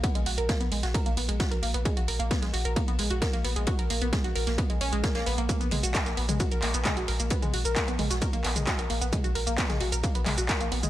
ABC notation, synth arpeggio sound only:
X:1
M:4/4
L:1/16
Q:1/4=132
K:Abdor
V:1 name="Synth arpeggio sound"
C A, G B B, C A, G B B, C A, G B B, C | A, G B B, C A, G B B, C A, G B B, C A, | G B B, C A, G B B, C A, D A, B, B, C B, | B, C A, G B B, C A, G B B, C A, G B B, |
C A, G B B, C A, G B B, C A, G B B, C | A, G B B, C A, G B B, C A, G B B, C A, |]